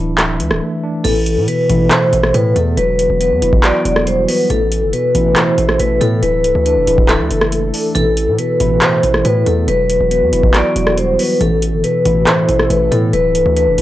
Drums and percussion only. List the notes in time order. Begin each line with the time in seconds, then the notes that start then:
0.18 cross-stick, clap, closed hi-hat
0.40 closed hi-hat
0.51 cross-stick
1.05 closed hi-hat, crash
1.26 closed hi-hat
1.48 closed hi-hat
1.70 closed hi-hat
1.91 cross-stick, clap, closed hi-hat
2.13 closed hi-hat
2.23 cross-stick
2.34 closed hi-hat
2.56 closed hi-hat
2.77 closed hi-hat
2.99 closed hi-hat
3.21 closed hi-hat
3.42 closed hi-hat
3.53 kick
3.64 cross-stick, clap, closed hi-hat
3.85 closed hi-hat
3.96 cross-stick
4.07 closed hi-hat
4.29 open hi-hat
4.50 closed hi-hat
4.72 closed hi-hat
4.93 closed hi-hat
5.15 closed hi-hat
5.36 cross-stick, clap, closed hi-hat
5.58 closed hi-hat
5.69 cross-stick
5.80 closed hi-hat
6.01 closed hi-hat
6.23 closed hi-hat
6.44 closed hi-hat
6.66 closed hi-hat
6.87 closed hi-hat
6.98 kick
7.09 cross-stick, clap, closed hi-hat
7.31 closed hi-hat
7.41 cross-stick
7.52 closed hi-hat
7.74 open hi-hat
7.95 closed hi-hat
8.17 closed hi-hat
8.39 closed hi-hat
8.60 closed hi-hat
8.82 cross-stick, clap, closed hi-hat
9.03 closed hi-hat
9.14 cross-stick
9.25 closed hi-hat
9.46 closed hi-hat
9.68 closed hi-hat
9.90 closed hi-hat
10.11 closed hi-hat
10.33 closed hi-hat
10.43 kick
10.54 cross-stick, clap, closed hi-hat
10.76 closed hi-hat
10.87 cross-stick
10.98 closed hi-hat
11.19 open hi-hat
11.41 closed hi-hat
11.62 closed hi-hat
11.84 closed hi-hat
12.05 closed hi-hat
12.27 cross-stick, clap, closed hi-hat
12.49 closed hi-hat
12.59 cross-stick
12.70 closed hi-hat
12.92 closed hi-hat
13.13 closed hi-hat
13.35 closed hi-hat
13.57 closed hi-hat
13.78 closed hi-hat